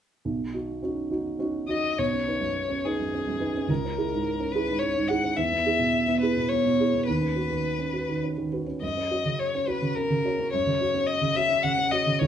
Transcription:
0.25 grand piano B1
0.54 grand piano D#4 F#4
0.83 grand piano C#4 D#4 F#4
1.11 grand piano D#4 F#4
1.39 grand piano C#4 D#4 F#4
1.68 grand piano D#4 F#4, violin D#5
1.99 grand piano B1, violin C#5
2.12 grand piano C#4
2.27 grand piano D#4 B4
2.40 grand piano F#2
2.70 grand piano C#4
2.85 grand piano D#4 B4, violin G#4
3.00 grand piano F#2
3.13 grand piano C#4
3.27 grand piano F#2
3.40 grand piano D#4 B4
3.56 grand piano C#4
3.69 grand piano C#2, violin A#4
3.85 grand piano C#4
3.97 grand piano E4 G#4
4.12 grand piano G#2
4.40 grand piano C#4
4.52 grand piano E4 G#4, violin B4
4.69 grand piano G#2
4.79 grand piano C#4, violin C#5
4.97 grand piano G#2
5.08 grand piano E4 G#4, violin F#5
5.24 grand piano C#4
5.37 grand piano E2, violin E5
5.52 grand piano B3
5.66 grand piano E4 G#4
5.79 grand piano B2
6.07 grand piano B3
6.20 grand piano E4 G#4, violin B4
6.36 grand piano B2
6.48 grand piano B3, violin C#5
6.66 grand piano B2
6.80 grand piano E4 G#4
6.94 grand piano B3
7.07 grand piano D#2, violin B4
7.21 grand piano C#4
7.36 grand piano F#4 B4
7.50 grand piano D#3
7.79 grand piano C#4
7.93 grand piano F#4 B4
8.09 grand piano D#3
8.24 grand piano C#4
8.38 grand piano D#3
8.53 grand piano F#4 B4
8.67 grand piano C#4
8.82 grand piano F#2, violin D#5
8.97 grand piano C#4
9.11 grand piano F#4 C#5
9.25 grand piano C#3
9.39 violin C#5
9.55 grand piano C#4
9.67 grand piano F#4 C#5, violin B4
9.82 grand piano C#3
9.95 grand piano C#4, violin A#4
10.10 grand piano C#3
10.25 grand piano F#4 C#5
10.39 grand piano C#4
10.52 grand piano F#2, violin C#5
10.67 grand piano C#3
10.81 grand piano F#4 C#5
10.94 grand piano C#4
11.07 violin D#5
11.21 grand piano C#3
11.35 grand piano F#4 C#5, violin E5
11.49 grand piano C#4
11.62 grand piano C#3, violin F#5
11.78 grand piano C#4
11.91 grand piano F#4 C#5, violin D#5
12.06 grand piano C#3
12.19 grand piano C#2, violin C#5

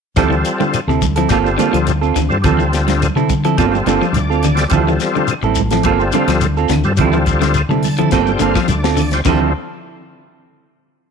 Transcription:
0.16 fingered electric bass D2, clean electric guitar F3 C4 E4 A4, tonewheel organ G3 C4 F4 A4, kick, snare, closed hi-hat, low conga, claves, shekere
0.30 clean electric guitar E3, shekere
0.45 closed hi-hat, shekere
0.60 clean electric guitar D3, high conga, shekere
0.74 closed hi-hat, claves, shekere
0.87 fingered electric bass D2, clean electric guitar C3 C4 E4 A4, shekere
1.02 kick, closed hi-hat, high conga, shekere
1.16 clean electric guitar F3 C4 E4 A4, closed hi-hat, shekere
1.29 fingered electric bass G1, tonewheel organ G3 C4 F4 A4, clean electric guitar A#3 C4 F4 A4, kick, snare, closed hi-hat, claves, shekere
1.44 tonewheel organ G3 C4 F4 A4, shekere
1.58 clean electric guitar D3 A#3 C4 F4 A4, closed hi-hat, high conga, shekere
1.73 fingered electric bass D2, clean electric guitar F3, closed hi-hat, claves, shekere
1.87 closed hi-hat, high conga, shekere
2.01 clean electric guitar C4 F4 A4, shekere
2.16 fingered electric bass D2, clean electric guitar D3, closed hi-hat, low conga, claves, shekere
2.29 fingered electric bass G2, tonewheel organ G3 C4 F4 A4, shekere
2.42 fingered electric bass D2, clean electric guitar F3 C4 A4, tonewheel organ G3 C4 F4 A4, muted clean electric guitar stroke, kick, closed hi-hat, low conga, claves, shekere
2.59 clean electric guitar E3, shekere
2.73 snare, closed hi-hat, shekere
2.88 clean electric guitar D3, snare, closed hi-hat, high conga, shekere
3.01 closed hi-hat, high conga, claves, shekere
3.15 clean electric guitar C3 C4 E4 A4, fingered electric bass D3, shekere
3.29 kick, closed hi-hat, high conga, shekere
3.45 clean electric guitar F3 C4 E4 A4, closed hi-hat, shekere
3.58 fingered electric bass G1, tonewheel organ G3 C4 F4 A4, clean electric guitar A#3 C4 F4 A4, kick, closed hi-hat, claves, shekere
3.70 tonewheel organ G3 C4 F4 A4, high conga
3.75 shekere
3.86 fingered electric bass G1, clean electric guitar D3 A#3 C4 F4 A4, closed hi-hat, high conga, shekere
4.01 clean electric guitar F3, claves, shekere
4.13 fingered electric bass D2, tonewheel organ D5, closed hi-hat, high conga, shekere
4.30 clean electric guitar C4 F4 A4, shekere
4.43 clean electric guitar D3, closed hi-hat, low conga, claves, shekere
4.55 tonewheel organ G3 C4 F4 A4, snare, closed hi-hat
4.60 shekere
4.68 fingered electric bass D2, clean electric guitar F3, tonewheel organ G3 C4 F4 A4, muted clean electric guitar stroke, kick, closed hi-hat, shekere
4.73 clean electric guitar E4 A4, low conga, claves
4.88 clean electric guitar E3, shekere
5.00 snare, closed hi-hat, shekere
5.15 clean electric guitar D3, high conga, shekere
5.28 closed hi-hat, claves, shekere
5.42 fingered electric bass A1, clean electric guitar C4 E4 A4, muted clean electric guitar stroke, shekere
5.46 high conga
5.55 kick, closed hi-hat, shekere
5.59 high conga
5.71 clean electric guitar F3 C4 E4 A4, snare, closed hi-hat, shekere
5.83 fingered electric bass G1, tonewheel organ G3 C4 F4 A4, clean electric guitar A#3 C4 F4 A4, kick, closed hi-hat, claves, shekere
5.98 tonewheel organ G3 C4 F4 A4, shekere
6.12 clean electric guitar D3 C4 F4 A4, closed hi-hat, high conga, shekere
6.28 fingered electric bass D2, clean electric guitar F3, snare, closed hi-hat, claves, shekere
6.41 closed hi-hat, high conga, shekere
6.57 clean electric guitar C4 F4 A4, shekere
6.69 fingered electric bass D2, clean electric guitar D3, snare, closed hi-hat, low conga, shekere
6.73 claves
6.84 fingered electric bass G2, tonewheel organ G3 C4 F4 A4, shekere
6.97 fingered electric bass D2, clean electric guitar F3 C4 E4, tonewheel organ G3 C4 F4 A4, kick, closed hi-hat, low conga, claves, shekere
7.01 clean electric guitar A4
7.13 clean electric guitar E3, shekere
7.26 kick, closed hi-hat, shekere
7.41 clean electric guitar D3, snare, closed hi-hat, high conga, shekere
7.54 closed hi-hat, claves, shekere
7.69 clean electric guitar C3 C4 E4 A4, fingered electric bass D3, high conga, shekere
7.83 tonewheel organ A5, open hi-hat, high conga, shekere
7.98 clean electric guitar F3 C4 E4 A4, closed hi-hat, low conga, shekere
8.11 fingered electric bass G1, tonewheel organ G3 C4 F4 A4 G5, clean electric guitar A#3 C4 F4 A4, kick, snare, closed hi-hat, claves, shekere
8.27 tonewheel organ G3 C4 F4 A4, high conga, shekere
8.39 fingered electric bass G1, clean electric guitar D3 A#3 C4 F4 A4, tonewheel organ F5, closed hi-hat, high conga, shekere
8.55 clean electric guitar F3, kick, snare, claves, shekere
8.68 fingered electric bass D2, tonewheel organ D5, closed hi-hat, high conga, shekere
8.84 clean electric guitar C4 F4 A4, snare, shekere
8.97 clean electric guitar D3, open hi-hat, low conga, claves, shekere
9.11 tonewheel organ G3 C4 F4 C5, snare, closed hi-hat, shekere
9.24 fingered electric bass D2, clean electric guitar D3 F3 C4 E4, tonewheel organ G3 C4 F4 A4, kick, crash, low conga, claves, shekere
9.29 clean electric guitar A4

